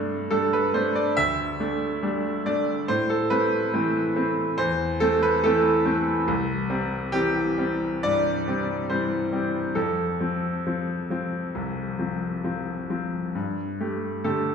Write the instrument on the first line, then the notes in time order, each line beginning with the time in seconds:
grand piano
Already playing: G2 A3 D4
0.31 G3 A3 D4 A4
0.53 B4
0.74 A3 D4 C5
0.95 D5
1.17 D2 E5
1.60 A3 D4
2.03 G3 A3 D4
2.46 A3 D4 D5
2.88 A2 C5
3.10 A4
3.30 A3 C4 B4
3.73 E3 A3 C4
4.16 A3 C4
4.58 E2 C5
5.00 A3 C4 A4
5.23 B4
5.44 E3 A3 C4 A4
5.85 A3 C4
6.28 C2
6.70 G3 C4
7.12 E3 G3 C4 G4
7.58 G3 C4
8.03 G2 D5
8.48 G3 C4
8.90 E3 G3 C4 C5
9.32 G3 C4
9.75 F2 A4
10.20 F3 C4
10.67 F3 C4
11.10 F3 C4
11.55 C2
11.99 F3 C4
12.44 F3 C4
12.90 F3 C4
13.35 G2
13.80 A3 G4
14.24 D3 A3 G4 A4